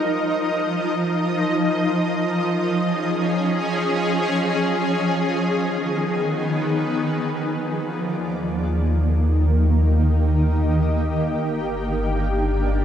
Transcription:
0.00 5.00 F3 medium
0.00 3.06 D#4 medium
0.00 3.01 A#4 medium
0.00 7.14 D#5 medium
2.15 8.20 G#4 medium
2.27 5.85 C#4 medium
4.97 7.13 D#3 medium
5.44 7.12 B3 medium
7.12 8.20 F3 medium
7.27 12.85 A#3 medium
8.17 11.36 D#2 medium
8.17 11.40 D#3 medium
8.17 12.85 D#3 medium
8.17 12.85 A#3 medium
8.88 12.85 G4 medium
9.63 11.41 D#5 medium
11.40 12.85 G1 medium
11.40 12.85 D4 medium

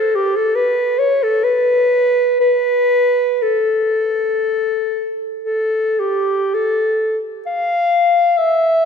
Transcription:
0.00 0.17 A4 medium
0.16 0.38 G4 medium
0.36 0.57 A4 medium
0.55 1.00 B4 medium
0.99 1.25 C#5 medium
1.23 1.45 A4 medium
1.44 2.40 B4 medium
2.40 3.44 B4 medium
3.43 5.27 A4 medium
5.44 6.01 A4 medium
6.00 6.56 G4 medium
6.55 7.19 A4 medium
7.46 8.39 F5 medium
8.38 8.85 E5 medium

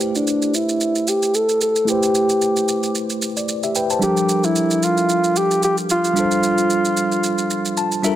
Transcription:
0.00 1.82 A3 medium
0.00 1.83 E4 medium
0.00 0.17 G4 loud
0.00 1.84 G4 medium
0.00 1.85 B4 medium
0.00 1.86 C5 medium
0.00 shaker medium
0.15 0.56 D4 medium
0.15 shaker soft
0.27 shaker medium
0.42 shaker medium
0.54 1.10 E4 medium
0.54 shaker medium
0.69 shaker soft
0.81 shaker medium
0.95 shaker soft
1.08 1.36 G4 medium
1.08 shaker medium
1.23 shaker medium
1.34 1.61 A4 loud
1.34 shaker medium
1.49 shaker soft
1.61 1.90 A4 loud
1.61 shaker medium
1.76 shaker medium
1.85 3.70 A3 medium
1.85 3.71 E4 medium
1.85 3.19 G4 medium
1.85 2.95 G4 loud
1.85 shaker medium
1.90 3.20 B4 medium
1.90 3.21 C5 medium
2.03 shaker medium
2.15 shaker medium
2.30 shaker medium
2.42 shaker medium
2.57 shaker soft
2.69 shaker medium
2.83 shaker soft
2.95 shaker medium
3.10 shaker soft
3.22 shaker medium
3.37 3.62 D5 medium
3.37 shaker medium
3.49 shaker medium
3.63 3.75 G4 medium
3.63 3.75 E5 medium
3.63 shaker soft
3.75 3.90 B4 medium
3.75 3.90 G5 medium
3.75 shaker medium
3.90 4.16 C5 medium
3.90 4.16 A5 medium
3.90 shaker medium
3.99 6.13 F3 medium
3.99 6.11 G3 medium
3.99 6.12 D4 medium
3.99 4.46 G4 loud
3.99 shaker medium
4.04 6.14 A4 medium
4.04 6.14 A#4 medium
4.17 shaker medium
4.29 shaker medium
4.44 4.85 E4 loud
4.44 shaker medium
4.56 shaker medium
4.71 shaker medium
4.83 5.39 F4 loud
4.83 shaker medium
4.98 shaker soft
5.09 shaker medium
5.24 shaker soft
5.36 5.63 G4 medium
5.36 shaker medium
5.51 shaker medium
5.63 5.76 G4 loud
5.63 shaker medium
5.78 shaker soft
5.90 8.01 F4 loud
5.90 shaker medium
6.05 shaker medium
6.13 7.99 G3 medium
6.13 8.00 D4 medium
6.13 8.00 F4 medium
6.13 shaker medium
6.18 8.01 A4 medium
6.18 8.02 C5 medium
6.31 shaker medium
6.43 shaker medium
6.58 shaker medium
6.70 shaker medium
6.85 shaker medium
6.97 shaker medium
7.12 shaker soft
7.24 shaker medium
7.38 shaker soft
7.51 shaker medium
7.65 shaker medium
7.77 8.02 A5 medium
7.77 shaker medium
7.92 shaker soft
8.03 8.16 G3 medium
8.03 8.16 D4 soft
8.03 8.16 F4 medium
8.03 8.16 A4 medium
8.03 8.16 A#4 medium
8.03 8.16 E5 medium
8.03 shaker medium

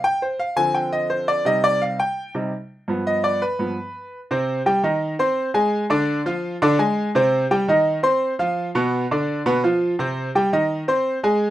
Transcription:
0.04 0.21 G5 loud
0.22 0.39 C5 medium
0.40 0.57 F5 medium
0.56 1.42 D3 medium
0.56 1.42 F3 medium
0.56 1.42 C4 medium
0.56 0.74 G#5 loud
0.75 0.92 G5 medium
0.93 1.10 D#5 medium
1.10 1.27 C5 medium
1.28 1.45 D5 medium
1.45 1.96 C3 medium
1.45 1.97 G3 medium
1.45 1.97 D#4 medium
1.45 1.63 D#5 loud
1.64 1.81 D5 loud
1.82 1.99 F5 medium
2.00 2.33 G5 medium
2.35 2.51 C3 medium
2.35 2.51 G3 soft
2.35 2.51 D#4 medium
2.88 3.39 G2 medium
2.88 3.39 F3 soft
2.88 3.40 B3 medium
3.07 3.24 D#5 loud
3.24 3.41 D5 medium
3.42 4.18 B4 medium
3.59 3.75 G2 soft
3.59 3.76 F3 soft
3.59 3.76 B3 medium
4.31 4.60 C3 medium
4.31 4.60 C4 medium
4.31 4.60 C5 medium
4.66 4.81 G3 medium
4.66 4.81 G4 medium
4.66 4.81 G5 medium
4.83 5.13 D#3 medium
4.83 5.13 D#4 medium
4.83 5.13 D#5 medium
5.19 5.49 C4 medium
5.19 5.49 C5 medium
5.19 5.49 C6 medium
5.54 5.84 G#3 medium
5.54 5.84 G#4 medium
5.54 5.84 G#5 medium
5.90 6.19 D3 medium
5.90 6.20 D4 medium
5.90 6.20 D5 medium
6.26 6.55 F3 medium
6.26 6.55 F4 medium
6.26 6.55 F5 medium
6.62 6.76 D3 loud
6.62 6.76 D4 loud
6.62 6.77 D5 medium
6.79 7.08 G#3 medium
6.79 7.08 G#4 medium
6.79 7.08 G#5 medium
7.15 7.44 C3 medium
7.15 7.44 C4 medium
7.15 7.45 C5 medium
7.51 7.65 G3 medium
7.51 7.65 G4 medium
7.51 7.65 G5 medium
7.68 7.97 D#3 medium
7.68 7.98 D#4 medium
7.68 7.98 D#5 medium
8.03 8.32 C4 medium
8.03 8.33 C5 medium
8.03 8.33 C6 medium
8.39 8.68 F3 medium
8.39 8.68 F4 medium
8.39 8.68 F5 medium
8.75 9.04 B2 loud
8.75 9.04 B3 medium
8.75 9.04 B4 medium
9.11 9.40 D3 medium
9.11 9.40 D4 medium
9.11 9.40 D5 medium
9.46 9.60 B2 medium
9.46 9.60 B3 medium
9.46 9.61 B4 medium
9.64 9.93 F3 medium
9.64 9.93 F4 medium
9.64 9.93 F5 medium
9.99 10.28 C3 medium
9.99 10.28 C4 medium
9.99 10.29 C5 medium
10.35 10.50 G3 medium
10.35 10.50 G4 medium
10.35 10.50 G5 medium
10.53 10.82 D#3 medium
10.53 10.82 D#4 medium
10.53 10.82 D#5 medium
10.88 11.17 C4 medium
10.88 11.17 C5 medium
10.88 11.18 C6 medium
11.23 11.50 G#3 medium
11.23 11.50 G#4 medium
11.23 11.50 G#5 medium

